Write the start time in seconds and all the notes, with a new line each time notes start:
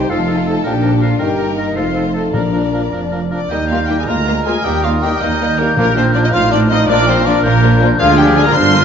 Already playing: G3 D#4 G4 C5 G5
0.10 F1 F2 F3 A3 D#4 F4 A4 F5
0.27 F3 D#4 A4
0.47 F3 D#4 A4 A5
0.64 A#1 A#2 F3 A#3 D4 G4 A#4 G5
0.81 F3 D4 A#4
1.01 F3 D4 F4 A#4 F5
1.19 G1 G2 D#3 D#4 G4 A#4 G5
1.23 A#3
1.38 D#3 D#4 A#4
1.56 D#3 D#4 A#4 D#5
1.76 F1 F2 F3 A3 D#4 F4 A4 C5 F5
1.94 F3 D#4 A4
2.13 F3 D#4 A4 A5
2.32 A#1 A#2 F3 A#3 D4 A#4 D5 A#5
2.53 F3 D4 A#4
2.73 F3 D4 A#4
2.92 F1 F2 F3 D4 A#4
3.12 F3 D4 A#4
3.31 F3 D4 A#4 D5
3.50 D#2 G3 A#3 D#4 G4 A#4 D#5 G6
3.69 G3 A#3 F4 G4 F5
3.88 G3 A#3 D#4 G4 G5
3.99 G#4 G#5
4.08 D2 G#3 A#3 F4 A#4 A#5 F6
4.26 G#3 A#3 F4
4.46 G#3 A#3 F4 G#4 G#5
4.64 D#2 G3 A#3 D#4 G4 G5 D#6
4.84 G3 A#3 D#4 F4 F5
5.02 G3 A#3 D#4 G4 G5
5.21 D#2 G3 A#3 D#4 D#5 G6
5.40 G3 A#3 D#4
5.58 G3 A#3 D#4 A#4
5.76 A#1 A#2 F3 A#3 D4 F4 A#4
5.96 F3 A#3 C4 D4 F4 C5
6.14 F3 A#3 D4 F4 D5
6.24 D#4 D#5
6.33 A1 A2 F3 C4 D#4 F4 C5 F5 F6
6.51 F3 C4 D4 D#4 F4 D5
6.69 F3 C4 D#4 F4 D#5
6.87 A#1 A#2 F3 A#3 D4 F4 A#4 D5 F6
7.07 F3 A#3 C4 D4 F4 C5
7.25 F3 A#3 D4 F4 D5
7.43 A#1 A#2 F3 A#3 D4 F4 A#4 G6
7.63 F3 A#3 D4 F4
7.80 F3 A#3 D4 F4
7.99 D2 D3 F3 G#3 D4 F4 G#4 F5 F6
8.18 F3 D4 G4 G#4 G5
8.36 D3 G#3 D4 F4 G#4 G#5
8.45 A#4 A#5
8.54 G1 G2 D3 G3 D4 A#4 C5 C6
8.74 F3 A#3 F4